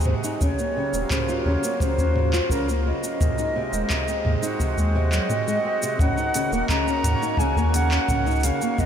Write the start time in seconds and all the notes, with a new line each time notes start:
Already playing: D#2 C3 G#3 F#4
0.01 shaker
0.03 C3 C5, mid tom, shaker
0.24 D#4, shaker
0.41 D#2 C#3 F#3 C#5, kick, shaker
0.59 A#3, shaker
0.77 C#3 A#3
0.93 D#1 C#4, shaker
1.01 F4
1.10 C#3 C5, kick, clap, mid tom, shaker
1.29 F4, shaker
1.45 D#2 C#3 C#5
1.64 A#3, shaker
1.80 C#3 C5, kick, shaker
1.98 D#2 C#4, shaker
2.16 C#3, mid tom
2.33 F4, clap, shaker
2.50 C#2 C#3 A#4, kick, shaker
2.69 A#3, shaker
2.86 C#3 D#5
3.03 C#4, shaker
3.20 D#2 C3 G#3, kick, mid tom, shaker
3.38 D#4, shaker
3.56 C3
3.68 C4
3.72 D#1 G#3, shaker
3.90 C3, kick, clap, shaker
4.08 C4, shaker
4.25 D#2 C3, mid tom
4.42 D#4 F#4, shaker
4.60 C3, kick, shaker
4.77 D#2 G#3, shaker
4.95 C3 D#5
5.12 F#3, clap, shaker
5.29 C4, mid tom, shaker
5.47 G#3, shaker
5.65 C4
5.82 C3, shaker
5.99 D#2 C#3 D#3 F#5, kick, mid tom, shaker
6.17 D#4, shaker
6.34 C#3, closed hi-hat, shaker
6.48 D#1 A#3
6.53 A#3, shaker
6.69 C#3 A#5, kick, clap, shaker
6.87 C#4, shaker
7.04 D#2 C#3, closed hi-hat, mid tom, shaker
7.14 C#5
7.22 D#4, shaker
7.37 C#3 G#5, kick, shaker
7.56 D#2 A#3, shaker
7.74 C#3 F#5, closed hi-hat, shaker
7.91 C#4, clap, shaker
8.08 C#2 C#3, kick, mid tom, shaker
8.26 D#4, shaker
8.31 shaker
8.35 shaker
8.40 closed hi-hat, shaker
8.44 C#3 F5, shaker
8.62 A#3, shaker
8.78 C#2 C3 D#5, kick, shaker